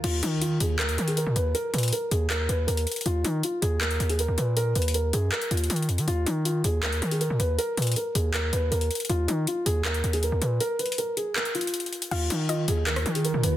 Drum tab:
CC |x-----------------------------------------------------------------------------------------------|------------------------------------------------------------------------------------------------|------------------------------------------------------------------------------------------------|------------------------------------------------------------------------------------------------|
HH |x-----------x-----------x-----------x-----------x-----x-----x-----x-----x-----------x-----------|x-----------x--x--x--x--x-----------x-----------x-----------x-----------x-----x-----x--x--x--x--|x-----------x-----------x-----------x-----------x-----x-----x-----x-----x-----------x-----------|x-----------x---x---x---x-----------x-----------x-----x-----x---x---x---x---x---x---x-----x-----|
CP |------------------------------------------------x-----------------------------------------------|------------------------------------------------x-----------------------------------------------|------------------------------------------------x-----------------------------------------------|------------------------------------------------x-----------------------------------------------|
SD |------------------------------------------------------------------------------------------------|------------------------------------------------------------------------------------------------|------------------------------------------------------------------------------------------------|------------------------------------------------------------------------------------------------|

CC |------------------------------------------------------------------------------------------------|------------------------------------------------------------------------------------------------|------------------------------------------------------------------------------------------------|------------------------------------------------------------------------------------------------|
HH |x-----------x-----------x-----------x-----------x-----x-----x-----x-----x-----------x-----------|x-----------x--x--x--x--x-----------x-----------x-----------x-----------x-----x-----x--x--x--x--|x-----------x-----------x-----------x-----------x-----x-----x-----x-----x-----------x-----------|x-----------x---x---x---x-----------x-----------x-----x-----x---x---x---x---x---x---x-----x-----|
CP |------------------------------------------------x-----------------------------------------------|------------------------------------------------x-----------------------------------------------|------------------------------------------------x-----------------------------------------------|------------------------------------------------x-----------------------------------------------|
SD |------------------------------------------------------------------------------------------------|------------------------------------------------------------------------------------------------|------------------------------------------------------------------------------------------------|------------------------------------------------------------------------------------------------|

CC |x-----------------------------------------------------------------------------------------------|
HH |x-----------x-----------x-----------x-----------x-----x-----x-----x-----x-----------x-----------|
CP |------------------------------------------------x-----------------------------------------------|
SD |------------------------------------------------------r-----------------------------------------|